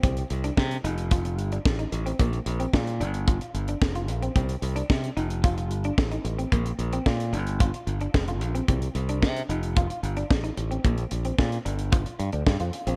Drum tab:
HH |xxxx-xxxxxxx-xxx|xxxx-xxxxxxx-xxx|xxxx-xxxxxxx-xxx|xxxx-xxxxxxx-xxx|
SD |----o-------o---|----o-------o---|----o-------o---|----o-------o---|
BD |o---o---o---o---|o---o---o---o---|o---o---o---o---|o---o---o---o---|

HH |xxxx-xxxxxxx-xxx|xxxx-xxxxxxx-xxx|
SD |----o-------o---|----o-------o---|
BD |o---o---o---o---|o---o---o---o---|